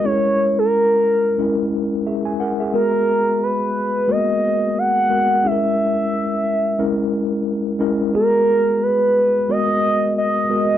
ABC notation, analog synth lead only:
X:1
M:4/4
L:1/16
Q:"Swing 16ths" 1/4=89
K:G#m
V:1 name="Analog synth lead"
c3 A8 z4 z | A4 B4 d4 f4 | e12 z4 | A4 B4 d4 d4 |]